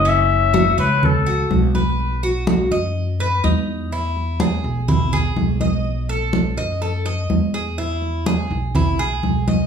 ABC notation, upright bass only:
X:1
M:4/4
L:1/8
Q:1/4=124
K:E
V:1 name="Upright bass" clef=bass
F,,,3 C,,3 B,,,2- | B,,,3 F,,3 E,,2- | E,,3 B,,,3 B,,,2- | B,,,3 F,,3 E,,2- |
E,,3 B,,,3 B,,,2 |]